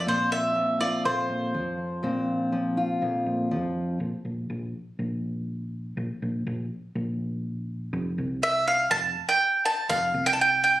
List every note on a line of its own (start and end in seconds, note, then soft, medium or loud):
0.00 0.55 F3 medium
0.00 0.80 F4 medium
0.00 0.07 D5 medium
0.06 1.02 A#1 medium
0.06 1.05 A#2 medium
0.06 2.03 C4 medium
0.06 0.32 C5 medium
0.32 0.78 E5 medium
0.55 1.54 F3 medium
0.81 2.77 F4 medium
0.81 1.05 D5 medium
1.04 1.29 A#1 medium
1.04 2.00 F2 medium
1.04 3.47 C5 medium
1.30 1.56 A#2 medium
1.54 2.01 F2 medium
1.54 2.52 F3 medium
2.03 2.98 A#1 loud
2.03 3.02 A#2 medium
2.03 3.97 C4 medium
2.52 3.50 F3 medium
2.77 3.97 F4 medium
3.02 3.25 A#1 medium
3.02 3.97 F2 medium
3.26 3.53 A#2 medium
3.51 3.98 F2 medium
3.51 3.98 F3 medium
4.00 4.12 A#1 medium
4.25 4.48 A#1 medium
4.50 4.73 A#1 medium
4.99 5.93 A#1 medium
5.97 6.09 A#1 medium
6.22 6.45 A#1 medium
6.47 6.70 A#1 medium
6.95 7.89 A#1 medium
7.93 8.16 F1 loud
8.18 8.88 C2 medium
8.43 8.67 E5 medium
8.68 8.90 F5 medium
8.91 9.14 F1 medium
8.91 9.25 A5 loud
9.29 9.65 G5 loud
9.65 9.88 A5 loud
9.89 10.13 F1 loud
9.89 10.26 F5 medium
10.14 10.80 C2 medium
10.26 10.33 G5 medium
10.33 10.40 A5 medium
10.41 10.62 G5 medium
10.64 10.80 G5 loud